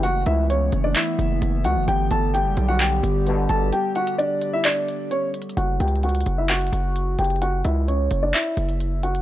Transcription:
<<
  \new Staff \with { instrumentName = "Grand piano" } { \time 4/4 \key fis \phrygian \tempo 4 = 130 <fis' fis''>8 <e' e''>8 <cis' cis''>8. <d' d''>16 <e' e''>4. <fis' fis''>8 | <g' g''>8 <a' a''>8 <g' g''>8. <fis' fis''>16 <g' g''>4. <a' a''>8 | <g' g''>8 <fis' fis''>8 <d' d''>8. <e' e''>16 <d' d''>4 <cis' cis''>8 r8 | <fis' fis''>8 <g' g''>8 <fis' fis''>8. <e' e''>16 <fis' fis''>4. <g' g''>8 |
<fis' fis''>8 <e' e''>8 <cis' cis''>8. <d' d''>16 <e' e''>4. <fis' fis''>8 | }
  \new Staff \with { instrumentName = "Ambient pad" } { \clef bass \time 4/4 \key fis \phrygian << { <e a>1 | <d g g'>1~ | <d g g'>1 | r1 |
r1 | } \\ { b1~ | b1~ | b1 | r1 |
r1 | } >> }
  \new Staff \with { instrumentName = "Brass ensemble" } { \clef bass \time 4/4 \key fis \phrygian r1 | r2. <g, b, d>4 | r1 | r1 |
r1 | }
  \new Staff \with { instrumentName = "808-style bass" } { \clef bass \time 4/4 \key fis \phrygian fis,,8 cis,4 fis,,8 r8 fis,,8 fis,,8 cis,16 fis,,16 | g,,8 g,,8. fis,,16 b,,4 g,,4 g,,8 | r1 | fis,,8 cis,4 fis,,4 fis,,4 fis,,8~ |
fis,,8 cis,4 fis,,8 r8 fis,,4. | }
  \new DrumStaff \with { instrumentName = "Drums" } \drummode { \time 4/4 hh8 hh8 hh8 hh8 <hc hh>8 hh8 hh8 hh8 | hh8 hh8 hh8 hh8 <hc hh>8 hh8 hh8 hh8 | hh8 <hh hho>16 hh16 hh8 hh8 <hc hh>8 hh8 \tuplet 3/2 { hh16 r16 r16 hh16 hh16 hh16 } | \tuplet 3/2 { hh16 r16 r16 hh16 hh16 hh16 } hh32 hh32 hh32 hh32 hh8 <hc hh>32 hh32 hh32 hh32 hh8 hh8 hh32 hh32 hh32 hh32 |
hh8 hh8 hh8 hh8 <hc hh>8 hh16 hh16 hh8 hh16 hh16 | }
>>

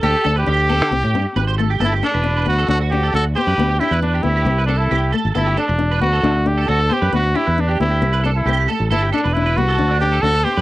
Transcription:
<<
  \new Staff \with { instrumentName = "Clean electric guitar" } { \time 4/4 \key g \major \tempo 4 = 135 g'8 a'16 b'16 g'8 a'8 r16 g'8 r16 b'16 c''16 a'16 g'16 | a'16 g'16 a'16 b'8 b'8 a'8 fis'8 a'16 fis'16 r16 c''16 b'16~ | b'16 g'16 g'16 b'8 g'8 g'8 b'16 a'8 g'8 a'8 | a'16 g'16 a'16 r8 b'8 a'8 r8 a'16 fis'16 a'16 c''16 b'16~ |
b'16 r16 g'16 b'8 g'8 g'8 b'16 a'8 g'8 a'8 | a'16 g'16 a'16 b'8 b'8 a'8 d'8 a'16 fis'16 a'16 c''16 b'16 | }
  \new Staff \with { instrumentName = "Trumpet" } { \time 4/4 \key g \major a'8. g'2~ g'8. r8 | e'8 d'4 fis'8 fis'8 g'8 a'8 g'8~ | g'8 e'8 d'8 e'4 d'16 e'8. r8 | e'8 d'4 fis'4 g'8 a'8 g'8 |
fis'8 e'8 d'8 e'4 d'16 e'8. r8 | e'8 d'8 e'8 fis'4 g'8 a'8 g'8 | }
  \new Staff \with { instrumentName = "Nylon-string guitar" } { \time 4/4 \key g \major r8 d'8 d'8 b8 c'8 c'8 c'8 a8 | b8 d'8 d'8 b8 d'8 d'8 d'8 b8 | b8 d'8 d'8 b8 c'8 c'8 c'8 a8 | b8 d'8 d'8 b8 d'8 d'8 d'8 b8 |
b8 d'8 d'8 b8 c'8 c'8 c'8 a8 | b8 d'8 d'8 b8 d'8 d'8 d'8 b8 | }
  \new Staff \with { instrumentName = "Fingered electric bass" } { \clef bass \time 4/4 \key g \major d,16 r16 d,8 d,8. d16 c,16 a,16 g,16 r16 aes,,4 | g,,8 r16 e,,8. d,8 d,4 d,8 r16 fis,16 | d,8 r16 e,8. d,8 c,4 c,8 r16 aes,,16 | g,,8 r16 e,,8. d,8 d,4 d,8 r16 fis,16 |
d,8 r16 e,8. d,8 c,4 c,8 r16 a,,16 | g,,8 r16 e,,8. c,8 d,4 d,8 r16 fis,16 | }
>>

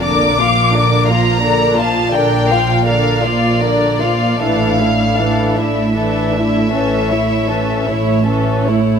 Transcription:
<<
  \new Staff \with { instrumentName = "Violin section" } { \time 12/8 \key a \phrygian \tempo 4. = 52 d'''4. bes''4 a''8 g''4 f''8 d''4. | f''4. e''1 r8 | }
  \new Staff \with { instrumentName = "Violin section" } { \time 12/8 \key a \phrygian <bes' d''>8 <f' f''>8 <bes' d''>8 <f' f''>8 <bes' d''>8 <f' f''>8 <bes' d''>8 <f' f''>8 <bes' d''>8 <f' f''>8 <bes' d''>8 <f' f''>8 | <e' a'>8 <d' e'>8 <e' a'>8 <d' e'>8 <e' a'>8 <d' e'>8 <cis' a'>8 <e' cis''>8 <cis' a'>8 <e' cis''>8 <cis' a'>8 <e' cis''>8 | }
  \new Staff \with { instrumentName = "Viola section" } { \time 12/8 \key a \phrygian <d d'>8 <f bes>8 <d d'>8 <f bes>8 <d d'>8 <f bes>8 <d d'>8 <f bes>8 <d d'>8 <f bes>8 <d d'>8 <f bes>8 | <e d'>8 <a e'>8 <e d'>8 <a e'>8 <e d'>8 <a e'>8 <e cis'>8 <a e'>8 <e cis'>8 <a e'>8 <e cis'>8 <a e'>8 | }
  \new Staff \with { instrumentName = "Cello section" } { \clef bass \time 12/8 \key a \phrygian bes,4. bes,4. bes,4. bes,4. | a,4. a,4. a,4. a,4. | }
  \new Staff \with { instrumentName = "Double bass section" } { \clef bass \time 12/8 \key a \phrygian bes,,4. bes,,4. bes,,4. bes,,4. | a,,4. a,,4. a,,4. a,,4. | }
>>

